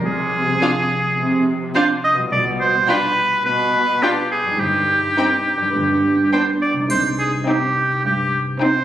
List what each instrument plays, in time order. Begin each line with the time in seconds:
Already playing: harp C3 F3 C4 F4 C5
0.01 harp D5
0.05 double bass section C2, cello section C3, oboe G#4
0.62 viola section D4, violin section F4 F5
1.18 cello section C3
1.75 viola section D4, violin section F4 F5, oboe C5
2.04 oboe D#5
2.14 harp B2
2.18 harp G3
2.23 harp F4
2.27 harp D5
2.32 double bass section B1, cello section B2, oboe D5
2.61 oboe C5
2.89 viola section D4, violin section F4 G5, oboe B4
3.45 cello section B2, oboe B4
4.02 viola section D4, violin section F4 G5, oboe G4
4.31 oboe G#4
4.42 harp G2
4.46 harp G3
4.51 harp D#4
4.55 harp C5
4.59 double bass section G1, cello section G2, oboe G4
5.17 viola section C4, violin section D#4 G5
5.57 harp G2
5.62 harp G3
5.66 harp D4
5.70 harp B4
5.75 double bass section G1, cello section G2
6.33 viola section B3, violin section D4 G5, oboe C5
6.62 oboe D5
6.72 harp C3
6.77 harp G3
6.81 harp D#4
6.86 cello section C3, harp C5, triangle
6.90 double bass section C2, oboe C5
7.19 oboe G#4
7.48 viola section C4, violin section D#4 G5, oboe G4
8.05 cello section G2, oboe G4
8.62 viola section C4, violin section D#4 G5, oboe C5